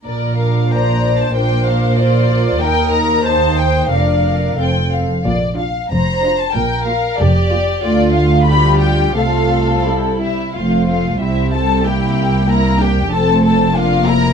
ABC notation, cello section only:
X:1
M:2/4
L:1/8
Q:1/4=93
K:Bb
V:1 name="Cello section" clef=bass
B,,4 | B,,4 | E,,4 | F,,2 F,, z |
B,,2 F,,2 | B,,2 F,,2 | [K:F] D,4 | C,3 z |
F,,2 C,,2- | C,,4 | F,,4 |]